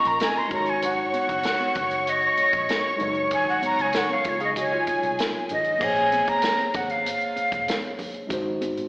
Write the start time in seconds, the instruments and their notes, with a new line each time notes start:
Already playing: tine electric piano A#3 C#4 F4 D#5, string section A#4 A#5
0.05 fingered electric bass A#1, flute A#5, closed hi-hat
0.20 flute G#5, snare, closed hi-hat, muted conga, high conga
0.38 flute C6
0.47 tine electric piano G#3 D#4, string section C#5 C#6, kick, closed hi-hat
0.51 fingered electric bass G#1, tine electric piano F#4 C#5, flute A#5, muted conga, low conga
0.66 flute G#5, closed hi-hat
0.82 flute F#5, closed hi-hat, muted conga, low conga
1.14 closed hi-hat, high conga
1.29 fingered electric bass F#1, kick, closed hi-hat
1.43 snare, closed hi-hat, muted conga
1.60 high conga
1.75 fingered electric bass F#1, kick, closed hi-hat, low conga
1.91 closed hi-hat
2.07 flute D#5, closed hi-hat
2.22 closed hi-hat
2.37 muted fingered electric bass stroke, closed hi-hat, muted conga
2.53 fingered electric bass A#1, kick, closed hi-hat
2.69 snare, closed hi-hat, muted conga, high conga
2.97 tine electric piano G#3 D#4, closed hi-hat, muted conga, low conga
3.01 fingered electric bass F#1, tine electric piano F#3 C#5
3.14 closed hi-hat
3.31 fingered electric bass G#1, flute G#5, kick, closed hi-hat, muted conga, low conga
3.49 flute F#5
3.62 flute A#5, closed hi-hat, muted conga, high conga
3.79 fingered electric bass C#2, flute G#5, closed hi-hat
3.93 snare, closed hi-hat
3.97 flute F#5
4.09 flute F5, high conga
4.24 fingered electric bass C#2, clean electric guitar F4 C#5, kick, closed hi-hat, muted conga, low conga
4.29 flute C#5
4.40 clean electric guitar G#4 F5, closed hi-hat
4.44 flute D#5
4.56 clean electric guitar F#4 D#5, string section G#4 G#5, kick, closed hi-hat, muted conga
4.60 flute C#5
4.72 clean electric guitar F4 C#5
4.87 muted fingered electric bass stroke, kick, closed hi-hat, muted conga
5.03 fingered electric bass C2, closed hi-hat
5.19 snare, closed hi-hat, muted conga, high conga
5.49 fingered electric bass G#1, flute D#5, closed hi-hat, muted conga, low conga
5.64 closed hi-hat
5.78 fingered electric bass A#1, tine electric piano A#3 G#4 C5, kick, crash, muted conga, low conga
5.83 tine electric piano C#5, flute G#5
5.96 closed hi-hat
6.12 closed hi-hat, muted conga, high conga
6.27 flute A#5, muted fingered electric bass stroke, kick, closed hi-hat
6.42 snare, closed hi-hat, muted conga
6.58 closed hi-hat, high conga
6.74 fingered electric bass G#1, flute F#5, kick, closed hi-hat, muted conga, low conga
6.89 flute F5, closed hi-hat
7.05 closed hi-hat, muted conga
7.21 closed hi-hat
7.36 muted fingered electric bass stroke, closed hi-hat, muted conga
7.52 fingered electric bass F1, kick, closed hi-hat
7.68 snare, closed hi-hat, muted conga, high conga
7.98 open hi-hat, muted conga, low conga
8.14 closed hi-hat
8.27 fingered electric bass G#1, tine electric piano G#3 D#4 F#4, kick, closed hi-hat, muted conga, low conga
8.33 tine electric piano C5
8.61 closed hi-hat, muted conga, high conga
8.77 muted fingered electric bass stroke, closed hi-hat